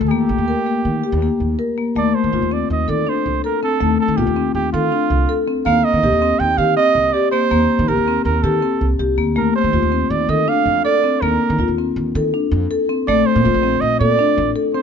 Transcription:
0.01 0.10 D2 loud
0.08 0.25 D#2 medium
0.08 0.33 A#3 medium
0.08 1.54 G4 loud
0.29 0.36 A#1 medium
0.38 0.53 D#2 medium
0.48 0.59 A#4 medium
0.67 0.89 A#3 medium
0.85 0.99 D#3 medium
1.04 1.15 G4 medium
1.12 1.27 D#2 loud
1.22 1.45 A#3 medium
1.40 1.54 D#2 medium
1.59 1.70 A#4 medium
1.78 1.89 A#3 medium
1.95 2.10 D#2 medium
1.95 2.18 A3 medium
1.95 2.16 D5 medium
2.15 2.54 C5 medium
2.24 2.34 D#3 medium
2.33 2.40 C2 medium
2.33 2.44 F4 medium
2.42 2.63 D#2 medium
2.51 2.74 C4 medium
2.51 2.70 D5 medium
2.70 2.84 D#2 medium
2.70 2.91 D#5 medium
2.88 3.03 D#3 loud
2.88 2.99 A4 medium
2.88 3.11 D5 medium
3.07 3.29 D4 medium
3.07 3.44 C5 medium
3.26 3.40 C2 medium
3.44 3.55 A4 medium
3.44 3.61 A#4 medium
3.63 3.74 C4 medium
3.63 3.97 A4 medium
3.81 3.95 D#2 medium
3.81 4.03 A3 loud
4.00 4.18 A4 medium
4.08 4.19 D#3 medium
4.17 4.25 C2 loud
4.17 4.29 F4 medium
4.17 4.54 G4 medium
4.27 4.48 D#2 medium
4.36 4.59 C4 medium
4.55 4.69 D#2 medium
4.55 4.72 G4 medium
4.73 4.88 D#3 loud
4.73 5.43 F4 medium
4.73 4.85 A4 medium
4.92 5.14 D4 medium
5.10 5.25 C2 medium
5.29 5.40 A4 medium
5.48 5.59 C4 medium
5.66 5.80 D#2 loud
5.66 5.88 A#3 loud
5.66 5.86 F5 loud
5.84 6.41 D#5 loud
5.93 6.04 D#3 medium
6.03 6.10 C2 medium
6.03 6.15 G4 medium
6.12 6.34 D#2 medium
6.22 6.44 C4 medium
6.39 6.54 D#2 medium
6.39 6.59 G5 loud
6.57 6.73 D#3 loud
6.57 6.70 G4 medium
6.57 6.76 F5 loud
6.77 7.00 C4 medium
6.77 7.14 D#5 loud
6.95 7.10 C2 medium
7.13 7.25 G4 medium
7.13 7.31 D5 loud
7.32 7.44 A#3 medium
7.32 7.90 C5 loud
7.51 7.65 D#2 medium
7.51 7.74 A#3 loud
7.79 7.90 D#3 loud
7.88 7.95 C2 medium
7.88 8.00 G4 medium
7.88 8.24 A#4 loud
7.97 8.19 D#2 medium
8.08 8.30 C4 medium
8.25 8.39 D#2 medium
8.25 8.44 A#4 medium
8.43 8.58 D#3 loud
8.43 8.55 G4 medium
8.43 8.91 A4 medium
8.62 8.85 C4 medium
8.81 8.95 C2 medium
8.99 9.16 C2 medium
8.99 9.11 G4 medium
9.18 9.35 D2 medium
9.18 9.29 A#3 medium
9.36 9.51 D#2 medium
9.36 9.59 A3 loud
9.36 9.54 A#4 medium
9.56 10.12 C5 medium
9.64 9.74 D#3 medium
9.73 9.80 F2 medium
9.73 9.85 F4 medium
9.82 10.04 D#2 medium
9.92 10.14 C4 medium
10.10 10.25 D#2 loud
10.10 10.31 D5 medium
10.29 10.43 D#3 loud
10.29 10.41 A4 medium
10.29 10.50 D#5 loud
10.48 10.70 D4 medium
10.48 10.84 F5 loud
10.66 10.80 F2 medium
10.85 10.96 A4 medium
10.85 11.23 D5 loud
11.04 11.15 C4 medium
11.21 11.36 D#2 loud
11.21 11.45 A#3 loud
11.21 11.77 A#4 medium
11.50 11.60 D#3 loud
11.58 11.66 F2 medium
11.58 11.71 F4 medium
11.68 11.89 D#2 medium
11.78 12.01 C4 medium
11.96 12.10 D#2 medium
12.15 12.29 D#3 loud
12.15 12.26 A4 medium
12.34 12.56 D4 medium
12.51 12.66 F2 loud
12.71 12.82 A4 medium
12.89 13.00 C4 medium
13.07 13.22 A#1 medium
13.07 13.30 A3 loud
13.07 13.27 D5 loud
13.26 13.82 C5 loud
13.36 13.47 A#2 loud
13.45 13.52 A1 loud
13.45 13.56 F4 medium
13.54 13.75 A#1 medium
13.63 13.86 C4 medium
13.81 13.96 A#1 medium
13.81 13.99 D#5 loud
13.99 14.14 A#2 loud
13.99 14.12 A4 medium
13.99 14.51 D5 loud
14.19 14.41 D4 medium
14.38 14.51 A1 loud
14.56 14.67 A4 medium
14.74 14.82 C4 medium
14.74 14.82 C5 medium

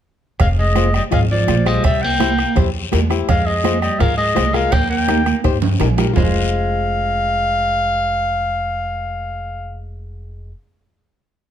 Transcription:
0.40 0.98 F1 loud
0.40 0.45 G#3 medium
0.40 0.49 F5 medium
0.40 bombo low medium
0.40 bombo rim medium
0.40 cowbell medium
0.40 high conga soft
0.40 long guiro medium
0.58 0.92 G#3 medium
0.58 0.92 D#5 medium
0.75 0.88 F4 medium
0.75 0.89 G#4 medium
0.75 0.89 C5 medium
0.75 bombo rim medium
0.75 cowbell medium
0.75 high conga medium
0.75 short guiro medium
0.94 1.01 G3 medium
0.94 1.03 D#5 medium
0.94 bombo rim medium
0.94 short guiro medium
1.11 1.41 G#1 loud
1.11 1.19 G#3 medium
1.11 1.24 F4 medium
1.11 1.25 G#4 medium
1.11 1.25 D#5 medium
1.11 1.21 F5 medium
1.11 bombo low medium
1.11 bombo rim medium
1.11 cowbell medium
1.11 high conga soft
1.11 low conga medium
1.11 long guiro medium
1.31 1.67 F3 medium
1.31 1.68 D5 medium
1.47 1.77 A#1 medium
1.47 1.54 F4 medium
1.47 1.55 G#4 medium
1.47 1.55 C5 medium
1.47 bombo rim medium
1.47 cowbell medium
1.47 high conga medium
1.47 short guiro medium
1.65 1.85 G3 medium
1.65 1.84 F4 medium
1.65 1.84 G#4 medium
1.65 1.84 C5 medium
1.65 1.84 D#5 medium
1.65 bombo rim medium
1.65 short guiro medium
1.84 2.42 C2 medium
1.84 2.04 G3 medium
1.84 2.04 E5 loud
1.84 bombo low medium
1.84 bombo rim medium
1.84 cowbell loud
1.84 high conga soft
1.84 long guiro medium
2.02 2.58 A#3 medium
2.02 2.56 G5 loud
2.20 2.33 E4 medium
2.20 2.33 G4 medium
2.20 2.33 C5 medium
2.20 bombo rim medium
2.20 cowbell medium
2.20 high conga medium
2.20 short guiro medium
2.39 bombo rim medium
2.39 short guiro medium
2.56 2.85 E2 medium
2.56 2.69 E4 medium
2.56 2.69 G4 medium
2.56 2.69 C5 medium
2.56 bombo low medium
2.56 bombo rim medium
2.56 cowbell medium
2.56 high conga soft
2.56 low conga medium
2.56 long guiro medium
2.92 3.22 E2 medium
2.92 2.99 E4 medium
2.92 2.99 G4 medium
2.92 2.99 A#4 medium
2.92 bombo rim medium
2.92 cowbell medium
2.92 high conga medium
2.92 low timbale medium
2.92 short guiro medium
3.10 3.28 E4 medium
3.10 3.29 G4 medium
3.10 3.29 C5 medium
3.10 bombo rim medium
3.10 short guiro medium
3.29 3.87 F2 medium
3.29 3.46 G#3 medium
3.29 3.48 F5 medium
3.29 bombo low medium
3.29 bombo rim medium
3.29 cowbell loud
3.29 high conga soft
3.29 low conga medium
3.29 long guiro medium
3.46 3.82 G#3 medium
3.46 3.81 D#5 medium
3.64 3.77 F4 medium
3.64 3.77 G#4 medium
3.64 3.77 C5 medium
3.64 bombo rim medium
3.64 cowbell medium
3.64 high conga medium
3.64 short guiro medium
3.81 4.00 G3 medium
3.81 4.01 D#5 medium
3.81 bombo rim medium
3.81 short guiro medium
4.00 4.30 G#2 medium
4.00 4.16 G#3 medium
4.00 4.13 F4 medium
4.00 4.13 G#4 medium
4.00 4.13 A#4 medium
4.00 4.17 F5 medium
4.00 bombo low medium
4.00 bombo rim medium
4.00 cowbell medium
4.00 high conga soft
4.00 low conga medium
4.00 long guiro medium
4.18 4.52 G#3 medium
4.18 4.56 D#5 medium
4.35 4.66 C2 medium
4.35 4.42 F4 medium
4.35 4.42 G#4 medium
4.35 4.43 C5 medium
4.35 bombo rim medium
4.35 cowbell medium
4.35 high conga medium
4.35 low timbale medium
4.35 short guiro medium
4.53 4.72 G#3 medium
4.53 4.72 F4 medium
4.53 4.72 G#4 medium
4.53 4.73 A#4 medium
4.53 4.74 F5 loud
4.53 bombo rim medium
4.53 short guiro medium
4.72 5.30 D#2 medium
4.72 4.89 A#3 medium
4.72 4.89 G5 loud
4.72 bombo low medium
4.72 bombo rim medium
4.72 cowbell loud
4.72 high conga soft
4.72 low conga medium
4.72 long guiro medium
4.90 5.41 A#3 medium
4.90 5.41 G5 loud
5.08 5.21 D#4 medium
5.08 5.21 G4 medium
5.08 5.21 A#4 medium
5.08 bombo rim medium
5.08 cowbell medium
5.08 high conga medium
5.08 short guiro medium
5.26 bombo rim medium
5.26 high conga medium
5.26 short guiro medium
5.44 5.74 G2 medium
5.44 5.57 D#4 medium
5.44 5.57 G4 medium
5.44 5.57 C5 medium
5.44 bombo low medium
5.44 bombo rim medium
5.44 cowbell medium
5.44 long guiro medium
5.62 low conga loud
5.62 high timbale medium
5.80 6.09 A#1 medium
5.80 5.86 D#4 medium
5.80 5.87 G4 medium
5.80 5.87 A#4 medium
5.80 bombo rim medium
5.80 cowbell medium
5.80 low conga medium
5.80 low timbale loud
5.80 short guiro medium
5.98 6.13 D#4 medium
5.98 6.15 G4 medium
5.98 6.16 A#4 medium
5.98 bombo rim medium
5.98 low conga medium
5.98 low timbale medium
5.98 short guiro medium
6.13 10.51 F1 medium
6.13 10.51 G#3 medium
6.13 10.49 F4 medium
6.13 10.50 G#4 medium
6.13 9.80 F5 medium
6.13 bombo low loud
6.13 low conga medium
6.13 low timbale loud
6.13 long guiro loud
6.18 10.51 C5 medium

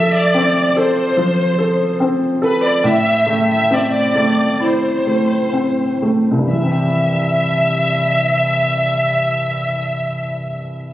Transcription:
0.00 1.16 F3 medium
0.00 0.75 A4 soft
0.00 0.15 E5 medium
0.16 0.77 D5 medium
0.34 1.96 C4 soft
0.77 1.57 A4 soft
0.77 1.97 C5 medium
1.17 2.80 F3 soft
1.59 2.40 A4 soft
2.00 2.82 C4 soft
2.42 2.83 A4 soft
2.42 2.62 B4 medium
2.65 2.85 D5 medium
2.84 6.46 A2 medium
2.84 3.46 E5 medium
3.26 4.14 A3 soft
3.51 3.70 E5 medium
3.71 5.49 C4 soft
3.71 3.79 D5 medium
3.79 3.86 E5 soft
3.88 4.61 D5 medium
4.15 5.05 A3 soft
4.60 6.46 E4 soft
4.60 6.02 C5 medium
5.07 6.01 A3 soft
5.53 6.47 C4 soft
6.02 6.49 A3 soft
6.31 10.02 C2 soft
6.39 10.10 G2 soft
6.47 10.18 E3 soft
6.51 10.22 E5 medium
6.55 10.27 G3 soft
6.63 10.34 C4 soft
6.72 10.43 G4 soft

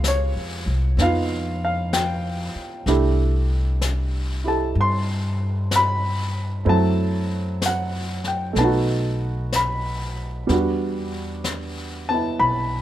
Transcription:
0.00 0.31 C#2 medium
0.00 2.88 G#3 soft
0.00 0.98 B3 soft
0.00 1.02 F4 soft
0.00 2.87 G4 soft
0.00 1.02 F5 medium
0.00 brush sweep soft
0.00 snare soft
0.00 hi-hat pedal medium
0.08 1.03 C#5 medium
0.35 0.65 F2 soft
0.66 0.96 C2 medium
0.97 2.52 F2 medium
0.97 2.88 B3 soft
0.97 2.89 D#4 soft
0.97 brush sweep soft
0.97 snare soft
1.02 2.90 F4 soft
1.02 1.60 F5 medium
1.65 1.95 F5 medium
1.93 2.68 G5 medium
1.93 brush sweep soft
1.93 snare soft
1.93 hi-hat pedal medium
2.55 muted upright bass stroke soft
2.86 4.72 C2 medium
2.86 6.64 A3 medium
2.86 6.67 D4 soft
2.86 4.43 E4 soft
2.86 4.44 G4 medium
2.86 brush sweep soft
2.86 snare soft
3.81 brush sweep soft
3.81 snare soft
3.81 hi-hat pedal soft
4.44 6.65 E4 soft
4.44 6.67 G4 soft
4.44 6.68 A4 soft
4.48 4.79 A5 medium
4.75 6.62 G2 medium
4.75 brush sweep soft
4.81 5.77 C6 medium
5.71 brush sweep soft
5.71 snare soft
5.71 hi-hat pedal medium
5.76 6.72 B5 medium
6.65 8.53 F#2 medium
6.65 8.58 F#3 medium
6.65 8.52 A3 medium
6.65 8.57 C4 soft
6.65 8.57 E4 soft
6.65 brush sweep soft
6.69 7.59 A5 medium
7.62 brush sweep soft
7.62 snare soft
7.62 hi-hat pedal medium
7.66 8.24 F#5 medium
8.24 8.59 G5 medium
8.24 snare soft
8.53 10.44 B1 medium
8.53 10.47 A3 soft
8.53 10.47 B3 soft
8.53 brush sweep soft
8.53 snare soft
8.59 10.50 D#4 soft
8.59 9.50 A5 medium
8.64 10.51 F#4 medium
9.52 10.31 B5 medium
9.52 brush sweep soft
9.52 snare soft
9.52 hi-hat pedal soft
10.47 12.36 E2 medium
10.47 12.82 G3 soft
10.47 12.09 B3 medium
10.47 12.82 D4 soft
10.47 brush sweep soft
10.47 snare soft
10.52 12.82 F#4 medium
11.44 brush sweep soft
11.44 snare soft
11.44 hi-hat pedal soft
12.09 12.82 B3 soft
12.09 12.38 A5 medium
12.13 12.82 E4 soft
12.39 12.82 B1 medium
12.39 12.82 B5 medium
12.39 brush sweep soft

